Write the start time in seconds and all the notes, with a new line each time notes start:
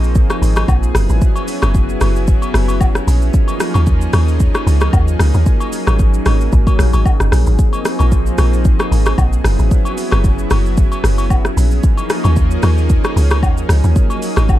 Already playing: A#1 F3 A#3 C4 D#4 G#4
0.04 shaker
0.15 kick, shaker
0.30 cross-stick, high agogo, shaker
0.42 G#1, open hi-hat, shaker
0.56 cross-stick, high agogo, shaker
0.68 A#1, kick, low woodblock, shaker
0.83 shaker
0.95 F#1 F#3 B3 C#4 E4, cross-stick, open hi-hat, shaker
1.09 G#1, shaker
1.22 kick, shaker
1.36 high agogo, shaker
1.48 open hi-hat, shaker
1.62 F#1, cross-stick, high agogo, shaker
1.74 kick, shaker
1.89 shaker
2.01 F#1, cross-stick, open hi-hat, high agogo, shaker
2.16 shaker
2.27 kick, shaker
2.42 high agogo, shaker
2.54 F#1, cross-stick, open hi-hat, shaker
2.68 high agogo, shaker
2.81 kick, low woodblock, shaker
2.95 cross-stick, shaker
3.07 A#1, open hi-hat, shaker
3.22 shaker
3.34 F3 A#3 D#4 G#4, kick, shaker
3.48 high agogo, shaker
3.60 cross-stick, open hi-hat, shaker
3.74 D#2, high agogo, shaker
3.87 kick, shaker
4.01 shaker
4.13 D#2, cross-stick, open hi-hat, high agogo, shaker
4.28 shaker
4.40 kick, shaker
4.55 cross-stick, high agogo, shaker
4.67 C#2, open hi-hat, shaker
4.81 cross-stick, high agogo, shaker
4.93 D#2, kick, low woodblock, shaker
5.08 shaker
5.20 C#2, cross-stick, open hi-hat, shaker
5.34 D#2, shaker
5.46 F#3 C#4, kick, shaker
5.60 high agogo, shaker
5.73 open hi-hat, shaker
5.87 G#1, cross-stick, high agogo, shaker
5.99 kick, shaker
6.14 shaker
6.26 G#1, cross-stick, open hi-hat, high agogo, shaker
6.41 shaker
6.52 G#1, kick, shaker
6.67 kick, high agogo, shaker
6.79 A#1, cross-stick, open hi-hat, shaker
6.93 G#1, high agogo, shaker
7.06 kick, low woodblock, shaker
7.20 F#1, cross-stick, shaker
7.32 A#1, cross-stick, open hi-hat, shaker
7.47 G#1, shaker
7.59 F3 A#3 C4 D#4, kick, shaker
7.73 high agogo, shaker
7.85 cross-stick, open hi-hat, shaker
7.99 A#1, high agogo, shaker
8.12 kick, shaker
8.26 shaker
8.38 A#1, cross-stick, open hi-hat, high agogo, shaker
8.53 shaker
8.65 kick, shaker
8.79 cross-stick, high agogo, shaker
8.92 G#1, open hi-hat, shaker
9.06 cross-stick, high agogo, shaker
9.18 A#1, kick, low woodblock, shaker
9.33 shaker
9.44 F#1 F#3 B3 C#4 E4, cross-stick, open hi-hat, shaker
9.59 G#1, shaker
9.71 kick, shaker
9.85 high agogo, shaker
9.98 open hi-hat, shaker
10.12 F#1, cross-stick, high agogo, shaker
10.24 kick, shaker
10.39 shaker
10.50 F#1, cross-stick, open hi-hat, high agogo, shaker
10.66 shaker
10.77 kick, shaker
10.92 high agogo, shaker
11.04 F#1, cross-stick, open hi-hat, shaker
11.18 high agogo, shaker
11.30 kick, low woodblock, shaker
11.45 cross-stick, shaker
11.57 A#1, open hi-hat, shaker
11.71 shaker
11.83 F3 A#3 D#4 G#4, kick, shaker
11.97 high agogo, shaker
12.10 cross-stick, open hi-hat, shaker
12.24 D#2, high agogo, shaker
12.36 kick, shaker
12.51 shaker
12.63 D#2, cross-stick, open hi-hat, high agogo, shaker
12.78 shaker
12.89 kick, shaker
13.04 cross-stick, high agogo, shaker
13.16 C#2, open hi-hat, shaker
13.31 cross-stick, high agogo, shaker
13.43 D#2, kick, low woodblock, shaker
13.58 shaker
13.69 C#2, cross-stick, open hi-hat, shaker
13.84 D#2, shaker
13.96 F#3 A#3 D#4 G#4, kick, shaker
14.10 high agogo, shaker
14.22 open hi-hat, shaker
14.36 G#1, cross-stick, high agogo, shaker
14.49 kick, low woodblock, shaker